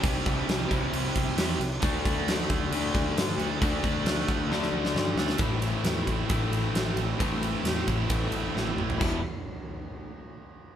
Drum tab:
CC |x-x-x-x-x-x-x-x-|x-x-x-x-x-x-x-x-|x-x-x-x---------|----------------|
RD |----------------|----------------|----------------|x-x-x-x-x-x-x-x-|
SD |----o-------o---|----o-------o---|----o---oo-oo-oo|----o-------o---|
T1 |----------------|----------------|----------------|----------------|
T2 |----------------|----------------|----------------|----------------|
FT |----------------|----------------|----------------|----------------|
BD |o-o---o---o-----|o-o---o---o-----|o-o---o---------|o-----o-o-------|

CC |----------------|x---------------|
RD |x-x-x-x-x-x-----|----------------|
SD |----o-------o---|----------------|
T1 |-------------o--|----------------|
T2 |--------------o-|----------------|
FT |---------------o|----------------|
BD |o-----o-o-------|o---------------|